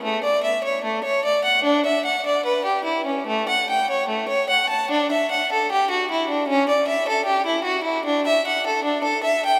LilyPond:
\new Staff \with { instrumentName = "Violin" } { \time 4/4 \key d \major \tempo 4 = 75 a16 d''16 e''16 cis''16 a16 cis''16 d''16 fis''16 d'16 e''16 fis''16 d''16 b'16 g'16 e'16 cis'16 | a16 fis''16 g''16 cis''16 a16 cis''16 fis''16 a''16 d'16 e''16 fis''16 a'16 g'16 fis'16 e'16 d'16 | cis'16 d''16 e''16 a'16 g'16 e'16 fis'16 e'16 d'16 e''16 fis''16 a'16 d'16 a'16 e''16 g''16 | }